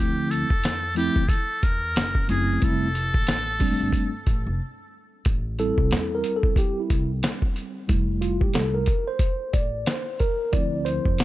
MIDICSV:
0, 0, Header, 1, 5, 480
1, 0, Start_track
1, 0, Tempo, 659341
1, 1906, Time_signature, 4, 2, 24, 8
1, 8186, End_track
2, 0, Start_track
2, 0, Title_t, "Muted trumpet"
2, 0, Program_c, 0, 59
2, 0, Note_on_c, 0, 67, 93
2, 225, Note_on_c, 0, 69, 102
2, 236, Note_off_c, 0, 67, 0
2, 702, Note_off_c, 0, 69, 0
2, 706, Note_on_c, 0, 67, 106
2, 939, Note_on_c, 0, 69, 92
2, 950, Note_off_c, 0, 67, 0
2, 1191, Note_on_c, 0, 70, 93
2, 1202, Note_off_c, 0, 69, 0
2, 1669, Note_off_c, 0, 70, 0
2, 1674, Note_on_c, 0, 68, 85
2, 1924, Note_on_c, 0, 69, 106
2, 1935, Note_off_c, 0, 68, 0
2, 3355, Note_off_c, 0, 69, 0
2, 8186, End_track
3, 0, Start_track
3, 0, Title_t, "Tine electric piano"
3, 0, Program_c, 1, 4
3, 0, Note_on_c, 1, 53, 61
3, 0, Note_on_c, 1, 57, 56
3, 0, Note_on_c, 1, 60, 60
3, 0, Note_on_c, 1, 64, 69
3, 337, Note_off_c, 1, 53, 0
3, 339, Note_off_c, 1, 57, 0
3, 343, Note_off_c, 1, 60, 0
3, 346, Note_off_c, 1, 64, 0
3, 692, Note_on_c, 1, 53, 77
3, 698, Note_on_c, 1, 57, 73
3, 706, Note_on_c, 1, 60, 79
3, 711, Note_on_c, 1, 64, 94
3, 881, Note_off_c, 1, 53, 0
3, 885, Note_off_c, 1, 57, 0
3, 889, Note_off_c, 1, 60, 0
3, 891, Note_off_c, 1, 64, 0
3, 1660, Note_on_c, 1, 54, 60
3, 1664, Note_on_c, 1, 57, 58
3, 1671, Note_on_c, 1, 60, 58
3, 1678, Note_on_c, 1, 64, 68
3, 1896, Note_off_c, 1, 57, 0
3, 1896, Note_on_c, 1, 55, 74
3, 1900, Note_off_c, 1, 60, 0
3, 1904, Note_on_c, 1, 57, 67
3, 1907, Note_off_c, 1, 64, 0
3, 1909, Note_on_c, 1, 60, 65
3, 1916, Note_on_c, 1, 64, 83
3, 1961, Note_off_c, 1, 54, 0
3, 2083, Note_off_c, 1, 55, 0
3, 2088, Note_off_c, 1, 57, 0
3, 2090, Note_off_c, 1, 60, 0
3, 2093, Note_off_c, 1, 64, 0
3, 2619, Note_on_c, 1, 55, 83
3, 2627, Note_on_c, 1, 56, 61
3, 2630, Note_on_c, 1, 60, 72
3, 2633, Note_on_c, 1, 62, 90
3, 2670, Note_on_c, 1, 57, 76
3, 2683, Note_off_c, 1, 56, 0
3, 2978, Note_off_c, 1, 55, 0
3, 2983, Note_off_c, 1, 60, 0
3, 2985, Note_off_c, 1, 62, 0
3, 3003, Note_off_c, 1, 57, 0
3, 4066, Note_on_c, 1, 55, 61
3, 4069, Note_on_c, 1, 60, 52
3, 4074, Note_on_c, 1, 69, 101
3, 4075, Note_on_c, 1, 64, 63
3, 4476, Note_on_c, 1, 70, 92
3, 4482, Note_off_c, 1, 69, 0
3, 4632, Note_on_c, 1, 69, 98
3, 4635, Note_off_c, 1, 70, 0
3, 4778, Note_off_c, 1, 69, 0
3, 4793, Note_on_c, 1, 67, 94
3, 4941, Note_off_c, 1, 64, 0
3, 4950, Note_on_c, 1, 64, 71
3, 4954, Note_off_c, 1, 67, 0
3, 5171, Note_off_c, 1, 64, 0
3, 5717, Note_off_c, 1, 55, 0
3, 5719, Note_off_c, 1, 60, 0
3, 5735, Note_on_c, 1, 55, 60
3, 5741, Note_on_c, 1, 57, 52
3, 5743, Note_on_c, 1, 64, 59
3, 5979, Note_on_c, 1, 65, 87
3, 6121, Note_on_c, 1, 67, 78
3, 6131, Note_off_c, 1, 65, 0
3, 6220, Note_on_c, 1, 69, 96
3, 6224, Note_off_c, 1, 67, 0
3, 6366, Note_on_c, 1, 70, 82
3, 6372, Note_off_c, 1, 69, 0
3, 6431, Note_off_c, 1, 55, 0
3, 6434, Note_off_c, 1, 57, 0
3, 6435, Note_off_c, 1, 64, 0
3, 6607, Note_on_c, 1, 72, 94
3, 6615, Note_off_c, 1, 70, 0
3, 6940, Note_on_c, 1, 74, 95
3, 6955, Note_off_c, 1, 72, 0
3, 7186, Note_on_c, 1, 72, 98
3, 7190, Note_off_c, 1, 74, 0
3, 7425, Note_on_c, 1, 70, 95
3, 7433, Note_off_c, 1, 72, 0
3, 7660, Note_on_c, 1, 53, 58
3, 7664, Note_on_c, 1, 60, 54
3, 7665, Note_on_c, 1, 74, 107
3, 7667, Note_on_c, 1, 64, 61
3, 7673, Note_off_c, 1, 70, 0
3, 7899, Note_on_c, 1, 72, 115
3, 7913, Note_off_c, 1, 74, 0
3, 8186, Note_off_c, 1, 53, 0
3, 8186, Note_off_c, 1, 60, 0
3, 8186, Note_off_c, 1, 64, 0
3, 8186, Note_off_c, 1, 72, 0
3, 8186, End_track
4, 0, Start_track
4, 0, Title_t, "Upright bass"
4, 0, Program_c, 2, 32
4, 0, Note_on_c, 2, 38, 99
4, 330, Note_off_c, 2, 38, 0
4, 367, Note_on_c, 2, 41, 73
4, 796, Note_off_c, 2, 41, 0
4, 846, Note_on_c, 2, 38, 79
4, 933, Note_off_c, 2, 38, 0
4, 1189, Note_on_c, 2, 40, 71
4, 1401, Note_off_c, 2, 40, 0
4, 1430, Note_on_c, 2, 30, 80
4, 1642, Note_off_c, 2, 30, 0
4, 1668, Note_on_c, 2, 30, 89
4, 1881, Note_off_c, 2, 30, 0
4, 1910, Note_on_c, 2, 29, 87
4, 2250, Note_off_c, 2, 29, 0
4, 2289, Note_on_c, 2, 33, 77
4, 2717, Note_off_c, 2, 33, 0
4, 2770, Note_on_c, 2, 31, 78
4, 2856, Note_off_c, 2, 31, 0
4, 3109, Note_on_c, 2, 33, 88
4, 3236, Note_off_c, 2, 33, 0
4, 3251, Note_on_c, 2, 29, 86
4, 3336, Note_off_c, 2, 29, 0
4, 3831, Note_on_c, 2, 33, 89
4, 4171, Note_off_c, 2, 33, 0
4, 4208, Note_on_c, 2, 36, 82
4, 4294, Note_off_c, 2, 36, 0
4, 4311, Note_on_c, 2, 40, 106
4, 4522, Note_off_c, 2, 40, 0
4, 5026, Note_on_c, 2, 36, 85
4, 5240, Note_off_c, 2, 36, 0
4, 5750, Note_on_c, 2, 29, 85
4, 6090, Note_off_c, 2, 29, 0
4, 6125, Note_on_c, 2, 33, 77
4, 6230, Note_off_c, 2, 33, 0
4, 6230, Note_on_c, 2, 36, 97
4, 6442, Note_off_c, 2, 36, 0
4, 6945, Note_on_c, 2, 33, 75
4, 7159, Note_off_c, 2, 33, 0
4, 7669, Note_on_c, 2, 38, 87
4, 8010, Note_off_c, 2, 38, 0
4, 8050, Note_on_c, 2, 41, 88
4, 8136, Note_off_c, 2, 41, 0
4, 8150, Note_on_c, 2, 33, 94
4, 8186, Note_off_c, 2, 33, 0
4, 8186, End_track
5, 0, Start_track
5, 0, Title_t, "Drums"
5, 227, Note_on_c, 9, 42, 65
5, 299, Note_off_c, 9, 42, 0
5, 367, Note_on_c, 9, 36, 88
5, 439, Note_off_c, 9, 36, 0
5, 462, Note_on_c, 9, 42, 92
5, 474, Note_on_c, 9, 38, 100
5, 535, Note_off_c, 9, 42, 0
5, 547, Note_off_c, 9, 38, 0
5, 700, Note_on_c, 9, 42, 81
5, 772, Note_off_c, 9, 42, 0
5, 844, Note_on_c, 9, 36, 85
5, 917, Note_off_c, 9, 36, 0
5, 936, Note_on_c, 9, 36, 94
5, 942, Note_on_c, 9, 42, 92
5, 1009, Note_off_c, 9, 36, 0
5, 1014, Note_off_c, 9, 42, 0
5, 1185, Note_on_c, 9, 42, 67
5, 1187, Note_on_c, 9, 36, 91
5, 1258, Note_off_c, 9, 42, 0
5, 1260, Note_off_c, 9, 36, 0
5, 1428, Note_on_c, 9, 42, 97
5, 1435, Note_on_c, 9, 38, 119
5, 1500, Note_off_c, 9, 42, 0
5, 1508, Note_off_c, 9, 38, 0
5, 1565, Note_on_c, 9, 36, 76
5, 1637, Note_off_c, 9, 36, 0
5, 1666, Note_on_c, 9, 42, 60
5, 1739, Note_off_c, 9, 42, 0
5, 1906, Note_on_c, 9, 42, 87
5, 1910, Note_on_c, 9, 36, 116
5, 1979, Note_off_c, 9, 42, 0
5, 1983, Note_off_c, 9, 36, 0
5, 2148, Note_on_c, 9, 42, 64
5, 2221, Note_off_c, 9, 42, 0
5, 2288, Note_on_c, 9, 36, 91
5, 2361, Note_off_c, 9, 36, 0
5, 2379, Note_on_c, 9, 42, 92
5, 2391, Note_on_c, 9, 38, 95
5, 2452, Note_off_c, 9, 42, 0
5, 2464, Note_off_c, 9, 38, 0
5, 2620, Note_on_c, 9, 46, 55
5, 2626, Note_on_c, 9, 36, 84
5, 2693, Note_off_c, 9, 46, 0
5, 2699, Note_off_c, 9, 36, 0
5, 2858, Note_on_c, 9, 36, 86
5, 2864, Note_on_c, 9, 42, 92
5, 2931, Note_off_c, 9, 36, 0
5, 2937, Note_off_c, 9, 42, 0
5, 3105, Note_on_c, 9, 42, 70
5, 3107, Note_on_c, 9, 36, 84
5, 3178, Note_off_c, 9, 42, 0
5, 3180, Note_off_c, 9, 36, 0
5, 3822, Note_on_c, 9, 42, 94
5, 3829, Note_on_c, 9, 36, 124
5, 3894, Note_off_c, 9, 42, 0
5, 3901, Note_off_c, 9, 36, 0
5, 4067, Note_on_c, 9, 42, 64
5, 4140, Note_off_c, 9, 42, 0
5, 4206, Note_on_c, 9, 36, 92
5, 4279, Note_off_c, 9, 36, 0
5, 4301, Note_on_c, 9, 42, 87
5, 4313, Note_on_c, 9, 38, 106
5, 4374, Note_off_c, 9, 42, 0
5, 4386, Note_off_c, 9, 38, 0
5, 4541, Note_on_c, 9, 42, 73
5, 4614, Note_off_c, 9, 42, 0
5, 4683, Note_on_c, 9, 36, 90
5, 4756, Note_off_c, 9, 36, 0
5, 4776, Note_on_c, 9, 36, 94
5, 4784, Note_on_c, 9, 42, 82
5, 4849, Note_off_c, 9, 36, 0
5, 4857, Note_off_c, 9, 42, 0
5, 5024, Note_on_c, 9, 42, 70
5, 5026, Note_on_c, 9, 36, 88
5, 5097, Note_off_c, 9, 42, 0
5, 5098, Note_off_c, 9, 36, 0
5, 5262, Note_on_c, 9, 42, 105
5, 5270, Note_on_c, 9, 38, 110
5, 5335, Note_off_c, 9, 42, 0
5, 5342, Note_off_c, 9, 38, 0
5, 5403, Note_on_c, 9, 36, 76
5, 5476, Note_off_c, 9, 36, 0
5, 5503, Note_on_c, 9, 42, 66
5, 5576, Note_off_c, 9, 42, 0
5, 5743, Note_on_c, 9, 42, 93
5, 5747, Note_on_c, 9, 36, 110
5, 5816, Note_off_c, 9, 42, 0
5, 5819, Note_off_c, 9, 36, 0
5, 5983, Note_on_c, 9, 42, 65
5, 6056, Note_off_c, 9, 42, 0
5, 6124, Note_on_c, 9, 36, 89
5, 6196, Note_off_c, 9, 36, 0
5, 6214, Note_on_c, 9, 42, 90
5, 6226, Note_on_c, 9, 38, 94
5, 6287, Note_off_c, 9, 42, 0
5, 6299, Note_off_c, 9, 38, 0
5, 6451, Note_on_c, 9, 42, 79
5, 6462, Note_on_c, 9, 36, 84
5, 6524, Note_off_c, 9, 42, 0
5, 6534, Note_off_c, 9, 36, 0
5, 6692, Note_on_c, 9, 42, 87
5, 6693, Note_on_c, 9, 36, 101
5, 6765, Note_off_c, 9, 42, 0
5, 6766, Note_off_c, 9, 36, 0
5, 6941, Note_on_c, 9, 42, 75
5, 6943, Note_on_c, 9, 36, 95
5, 7014, Note_off_c, 9, 42, 0
5, 7016, Note_off_c, 9, 36, 0
5, 7180, Note_on_c, 9, 42, 96
5, 7188, Note_on_c, 9, 38, 111
5, 7253, Note_off_c, 9, 42, 0
5, 7260, Note_off_c, 9, 38, 0
5, 7422, Note_on_c, 9, 42, 64
5, 7428, Note_on_c, 9, 36, 71
5, 7494, Note_off_c, 9, 42, 0
5, 7501, Note_off_c, 9, 36, 0
5, 7664, Note_on_c, 9, 42, 87
5, 7668, Note_on_c, 9, 36, 119
5, 7736, Note_off_c, 9, 42, 0
5, 7740, Note_off_c, 9, 36, 0
5, 7906, Note_on_c, 9, 42, 64
5, 7979, Note_off_c, 9, 42, 0
5, 8048, Note_on_c, 9, 36, 91
5, 8120, Note_off_c, 9, 36, 0
5, 8142, Note_on_c, 9, 42, 88
5, 8154, Note_on_c, 9, 38, 92
5, 8186, Note_off_c, 9, 38, 0
5, 8186, Note_off_c, 9, 42, 0
5, 8186, End_track
0, 0, End_of_file